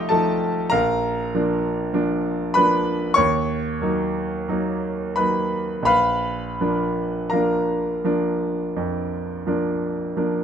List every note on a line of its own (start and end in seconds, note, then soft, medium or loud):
0.00 0.76 C2 medium
0.00 0.12 F3 soft
0.00 0.12 A3 medium
0.00 0.12 D#4 medium
0.00 0.75 G4 medium
0.00 0.76 C5 medium
0.00 0.75 D#5 medium
0.00 0.71 F5 medium
0.00 0.76 G5 loud
0.00 0.76 C6 loud
0.00 0.75 F6 loud
0.09 0.70 F3 medium
0.09 0.70 A3 soft
0.09 0.70 D#4 medium
0.09 0.69 A4 medium
0.09 0.72 A5 medium
0.70 1.32 A#1 medium
0.70 2.52 A#4 medium
0.70 2.52 F5 medium
0.70 2.55 A#5 loud
1.35 1.91 F3 soft
1.35 1.91 A#3 soft
1.35 1.92 D4 medium
1.93 2.52 F3 soft
1.93 2.52 A#3 medium
1.93 2.52 D4 medium
2.54 3.15 F3 medium
2.54 3.16 A#3 medium
2.54 3.16 D4 medium
2.54 3.14 B4 medium
2.54 3.18 B5 loud
3.14 3.80 D#2 medium
3.14 5.13 C#5 medium
3.14 5.16 C#6 loud
3.82 4.45 F#3 soft
3.82 4.45 A#3 medium
3.82 4.46 D#4 medium
4.49 5.14 F#3 medium
4.49 5.14 A#3 medium
4.49 5.14 D#4 medium
5.16 5.84 F#3 soft
5.16 5.84 A#3 soft
5.16 5.85 D#4 soft
5.16 5.84 B4 medium
5.16 5.84 B5 medium
5.83 6.54 A#1 medium
5.83 7.27 F5 medium
5.83 7.31 B5 loud
5.87 7.27 B4 medium
6.61 7.29 F3 soft
6.61 7.29 A#3 soft
6.61 7.29 D4 soft
7.30 8.02 F3 soft
7.30 8.02 A#3 soft
7.30 10.12 A#4 medium
7.30 10.11 F5 medium
7.30 10.15 A#5 medium
7.34 8.02 D4 medium
8.05 8.73 F3 medium
8.05 8.73 A#3 soft
8.05 8.73 D4 medium
8.76 9.45 F2 medium
9.47 10.12 F3 soft
9.47 10.12 A#3 soft
9.47 10.12 D4 soft
10.17 10.44 F3 soft
10.17 10.44 A#3 soft
10.17 10.44 D4 medium